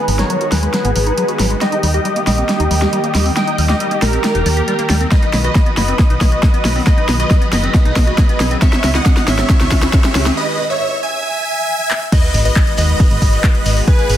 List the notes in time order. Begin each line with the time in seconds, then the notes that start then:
Already playing: G#4 B4
0.08 G#1 D#3 F#3 G#3 B3 F#4, open hi-hat
0.19 D#4 A#4 C#5, snare, closed hi-hat
0.30 D#3 F#3 G#3 B3 F#4, closed hi-hat
0.41 D#3 G#3 B3 F#4, closed hi-hat
0.52 D#2 F#3 G#4 B4, snare, open hi-hat
0.63 D#3 G#3 B3 F#4, closed hi-hat
0.74 D#3 F#3 G#3 B3 F#4, snare, closed hi-hat
0.85 G#1 B3, closed hi-hat
0.96 G#1 D#3 F#3 G#3 B3 F#4, open hi-hat
1.07 D#4, closed hi-hat
1.17 D#3 F#3 G#3 B3 F#4, closed hi-hat
1.28 D#3 G#3 B3 F#4, closed hi-hat
1.39 G#1 F#3, snare, open hi-hat
1.50 D#3 G#3 B3 F#4, closed hi-hat
1.61 D#3 G3 A#3 G4 D#5, snare, closed hi-hat
1.72 D#4, closed hi-hat
1.83 D#2 D#3 G3 A#3 G4, open hi-hat
1.94 G4 D#5, closed hi-hat
2.05 D#3 G3 A#3 G4, closed hi-hat
2.16 D#3 G3 A#3 G4, closed hi-hat
2.27 A#1 G3 G4 D#5, snare, open hi-hat
2.38 D#3 G3 A#3 C4 G4, closed hi-hat
2.49 D#3 G3 A#3 G4, snare, closed hi-hat
2.60 D#2 D#4, closed hi-hat
2.71 D#2 D#3 G3 A#3 G4, open hi-hat
2.82 G4, snare
2.93 D#3 G3 A#3 G4, closed hi-hat
3.04 D#3 G3 A#3 G4, closed hi-hat
3.15 D#2 G3, snare, open hi-hat
3.26 D#3 G3 A#3 C4 G4, open hi-hat
3.36 D#3 G3 A#3 G4 D#5 G5, snare, closed hi-hat
3.47 D#4, closed hi-hat
3.58 D#2 D#3 G3 A#3 G4, open hi-hat
3.69 G4 D#5, snare
3.80 D#3 G3 A#3 G4, closed hi-hat
3.91 D#3 G3 A#3 G4, closed hi-hat
4.02 A#1 G3 G4 A#4, snare, open hi-hat
4.13 D#3 G3 A#3 C4 G4, closed hi-hat
4.24 D#3 G3 A#3 G4, snare, closed hi-hat
4.35 D#1 D#4, closed hi-hat
4.46 D#2 D#3 G3 A#3 G4, open hi-hat
4.57 G4, closed hi-hat
4.68 D#3 G3 A#3 G4, closed hi-hat
4.79 D#3 G3 A#3 G4, closed hi-hat
4.90 D#2 G3, snare, open hi-hat
5.01 D#3 G3 A#3 C4 G4, closed hi-hat
5.11 D#3 F#3 B3 F#4 B4 D#5, kick, snare, closed hi-hat, riser
5.23 D#4, closed hi-hat
5.33 B1 D#3 F#3 B3 F#4, snare, open hi-hat
5.44 F#4 B4 D#5, closed hi-hat
5.55 D#3 F#3 B3 F#4, kick, snare, closed hi-hat
5.66 D#3 F#3 B3 F#4, closed hi-hat
5.77 F#1 F#3 B4 D#5, snare, open hi-hat
5.88 D#3 F#3 B3 C4 F#4, closed hi-hat
5.99 D#3 F#3 B3 F#4, kick, snare, closed hi-hat
6.10 B1 D#4, closed hi-hat
6.21 B1 D#3 F#3 B3 F#4, kick, snare, open hi-hat
6.32 F#4, closed hi-hat
6.43 D#3 F#3 B3 F#4, kick, snare, closed hi-hat
6.54 D#3 F#3 B3 F#4, closed hi-hat
6.65 B1 F#3, snare, open hi-hat
6.76 D#3 F#3 B3 C4 F#4, open hi-hat
6.87 D#3 F#3 B3 G#4 B4 D#5, kick, snare, closed hi-hat
6.98 D#4, closed hi-hat
7.08 B1 D#3 F#3 B3 G#4, snare, open hi-hat
7.20 F#4 B4 D#5, closed hi-hat
7.30 D#3 F#3 B3 G#4, kick, snare, closed hi-hat
7.41 D#3 F#3 B3 G#4, closed hi-hat
7.52 F#1 F#3 B4 D#5, snare, open hi-hat
7.63 D#3 F#3 B3 C4 G#4, closed hi-hat
7.74 D#3 F#3 B3 G#4, kick, snare, closed hi-hat
7.85 B1 D#4, closed hi-hat
7.96 B1 D#3 F#3 B3 G#4, kick, snare, open hi-hat
8.07 F#4, closed hi-hat
8.18 D#3 F#3 B3 G#4, kick, snare, closed hi-hat
8.29 D#3 F#3 B3 G#4, closed hi-hat
8.40 B1 F#3, snare, open hi-hat
8.51 D#3 F#3 B3 C4 G#4, closed hi-hat
8.62 D#3 G#3 C#4 E4 C#5 E5, kick, snare, closed hi-hat
8.73 D#4, snare, closed hi-hat
8.84 C#2 D#3 G#3 C#4 E4, snare, open hi-hat
8.95 E4 D#5 F#5, snare, closed hi-hat
9.06 D#3 G#3 C#4 E4, kick, snare, closed hi-hat
9.17 D#3 G#3 C#4 E4, snare, closed hi-hat
9.28 G#1 G#3 C#5 E5, snare, open hi-hat
9.39 D#3 G#3 C4 C#4 E4, snare, closed hi-hat
9.50 D#3 G#3 C#4 E4, kick, snare, closed hi-hat
9.60 C#2 D#4, snare, closed hi-hat
9.71 C#2 D#3 G#3 C#4 E4, kick, snare, open hi-hat
9.82 E4, snare, closed hi-hat
9.93 D#3 G#3 C#4 E4, kick, snare, closed hi-hat
10.04 D#3 G#3 C#4 E4, snare, closed hi-hat
10.15 C#2 G#3, snare, open hi-hat
10.26 D#3 G#3 C4 C#4 E4, snare, open hi-hat
10.37 B4 D#5
10.70 C#5 E5
11.03 E5 G#5
11.91 clap
12.12 D#3 G#3 B3 F#4 B4 D#5, kick, closed hi-hat, crash, sub drop, shekere
12.23 closed hi-hat, shekere
12.34 G#1 D#3 G#3 B3 F#4, open hi-hat, shekere
12.45 B4 D#5, closed hi-hat, shekere
12.56 D#3 G#3 B3 F#4, kick, clap, closed hi-hat, shekere
12.67 D#3 G#3 B3 F#4, closed hi-hat, shekere
12.77 D#2 B4 D#5, open hi-hat, shekere
12.89 D#3 G#3 B3 F#4, closed hi-hat, shekere
13.00 D#3 G#3 B3 F#4, kick, closed hi-hat, shekere
13.11 G#1, closed hi-hat, shekere
13.22 G#1 D#3 G#3 B3 F#4, kick, open hi-hat, shekere
13.33 closed hi-hat, shekere
13.44 D#3 G#3 B3 F#4, kick, clap, closed hi-hat, shekere
13.55 D#3 G#3 B3 F#4, closed hi-hat, shekere
13.66 G#1, open hi-hat, shekere
13.77 D#3 G#3 B3 F#4, open hi-hat, shekere
13.87 D#3 G#3 B3 F#4 G#4 B4, kick, closed hi-hat, shekere
13.99 closed hi-hat, shekere
14.09 G#1 D#3 G#3 B3 F#4, open hi-hat, shekere